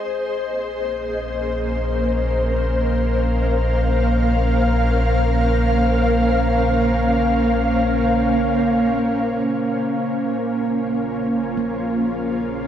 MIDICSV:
0, 0, Header, 1, 4, 480
1, 0, Start_track
1, 0, Key_signature, -5, "minor"
1, 0, Tempo, 500000
1, 12166, End_track
2, 0, Start_track
2, 0, Title_t, "Ambient pad"
2, 0, Program_c, 0, 92
2, 0, Note_on_c, 0, 68, 86
2, 0, Note_on_c, 0, 72, 74
2, 0, Note_on_c, 0, 75, 65
2, 45, Note_on_c, 0, 58, 72
2, 599, Note_on_c, 0, 61, 84
2, 799, Note_on_c, 0, 70, 72
2, 1549, Note_off_c, 0, 68, 0
2, 2288, Note_on_c, 0, 77, 91
2, 3679, Note_off_c, 0, 75, 0
2, 9614, Note_on_c, 0, 65, 70
2, 10682, Note_off_c, 0, 77, 0
2, 10805, Note_on_c, 0, 68, 76
2, 12166, Note_off_c, 0, 58, 0
2, 12166, Note_off_c, 0, 61, 0
2, 12166, Note_off_c, 0, 65, 0
2, 12166, Note_off_c, 0, 68, 0
2, 12166, Note_off_c, 0, 70, 0
2, 12166, Note_off_c, 0, 72, 0
2, 12166, End_track
3, 0, Start_track
3, 0, Title_t, "Handpan"
3, 0, Program_c, 1, 114
3, 11110, Note_on_c, 1, 58, 52
3, 12166, Note_off_c, 1, 58, 0
3, 12166, End_track
4, 0, Start_track
4, 0, Title_t, "Analog synth bass"
4, 0, Program_c, 2, 38
4, 50, Note_on_c, 2, 34, 87
4, 9028, Note_off_c, 2, 34, 0
4, 9091, Note_on_c, 2, 34, 73
4, 12166, Note_off_c, 2, 34, 0
4, 12166, End_track
0, 0, End_of_file